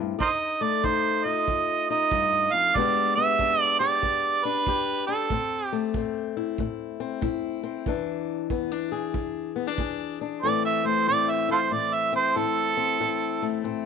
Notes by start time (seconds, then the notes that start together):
Already playing: G2 A3 C4 E4
0.19 F2 D#4 A#4 C5 D#5, kick
0.61 A3 D5
0.83 F2 D#4 C5, kick
1.25 F4 D#5
1.48 F2, kick
1.90 D#4 D#5
2.11 G2, kick
2.53 F2 F5
2.75 E2 G#3 B3 D4 G4 D5, kick
3.15 B3 E5
3.39 E2 D4, kick
3.61 D5
3.80 G4 D5
4.03 E2, kick
4.45 D4 B4
4.67 E2 G4, kick
5.07 D4 A4
5.30 A2 C4, kick
5.66 G4
5.72 A3
5.94 A2 C4, kick
6.37 E4
6.58 A2, kick
7.00 C4
7.21 A2 E4, kick
7.63 C4
7.86 E2 E3 D4, kick
8.50 E2 B3, kick
8.72 D4
8.92 G#4
9.14 E2, kick
9.56 B3
9.67 D4
9.78 E2 G#4, kick
10.21 D4
10.42 A2 E3 A3 C4 E4 D5
10.65 E5
10.85 A3 C5
11.07 A2 C4 D5
11.30 E5
11.49 E4 F4 A4 C5
11.71 A2 D5
11.94 E5
12.13 C4 C5
12.36 A2 E4 A4
12.77 C4
13.00 A2 C4
13.42 A3
13.64 A2 C4